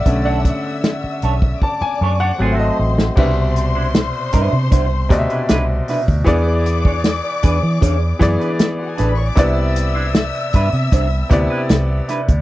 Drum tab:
CC |----------------|x---------------|----------------|----------------|
HH |x-x-x-x---------|--x-x-x-x-xxx-o-|x-x-x-x-x-xxx-x-|x-x-x-x-x-x-x-xx|
SD |----o----------o|----o-----o-o-o-|----o-----o-o-o-|----o-----o-o-o-|
BD |o-o----oo-------|o-----o-o-o----o|o--o--o-o-o-----|o-----o-o-o----o|